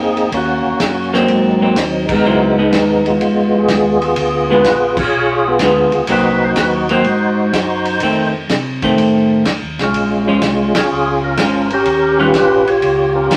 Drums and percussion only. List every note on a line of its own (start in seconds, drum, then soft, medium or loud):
0.17 ride soft
0.32 kick soft
0.32 ride medium
0.80 kick soft
0.80 snare medium
0.80 hi-hat pedal medium
0.80 ride medium
1.14 snare soft
1.28 kick soft
1.28 ride medium
1.76 kick soft
1.76 snare medium
1.76 hi-hat pedal medium
1.76 ride medium
2.09 kick medium
2.09 crash medium
2.72 kick soft
2.72 snare medium
2.72 hi-hat pedal soft
2.72 ride medium
3.06 ride soft
3.21 kick soft
3.21 ride medium
3.68 kick soft
3.68 snare medium
3.68 hi-hat pedal medium
3.68 ride medium
4.02 ride soft
4.16 kick soft
4.16 ride medium
4.64 kick soft
4.64 snare medium
4.64 hi-hat pedal medium
4.64 ride medium
4.97 kick medium
4.97 crash medium
5.59 kick soft
5.59 snare medium
5.59 hi-hat pedal medium
5.59 ride medium
5.92 ride soft
6.07 kick soft
6.07 ride medium
6.56 kick soft
6.56 snare medium
6.56 hi-hat pedal medium
6.56 ride medium
6.89 ride soft
7.04 kick soft
7.04 ride soft
7.53 kick soft
7.53 snare medium
7.53 hi-hat pedal medium
7.53 ride medium
7.85 ride soft
8.00 kick soft
8.00 ride medium
8.49 kick soft
8.49 snare medium
8.49 hi-hat pedal soft
8.49 ride medium
8.82 kick medium
8.82 ride medium
8.98 kick soft
8.98 ride medium
9.45 kick soft
9.45 snare medium
9.45 hi-hat pedal medium
9.45 ride medium
9.79 snare soft
9.79 ride soft
9.94 kick soft
9.94 ride medium
10.42 kick soft
10.42 snare medium
10.42 hi-hat pedal medium
10.42 ride medium
10.75 snare medium
10.75 ride medium
11.37 kick soft
11.37 snare medium
11.37 hi-hat pedal medium
11.37 ride medium
11.70 ride soft
11.85 kick soft
11.85 ride medium
12.34 kick soft
12.34 snare medium
12.34 hi-hat pedal medium
12.34 ride medium
12.67 ride soft
12.82 kick soft
12.82 ride medium
13.30 kick soft
13.30 snare medium
13.30 hi-hat pedal medium
13.30 ride medium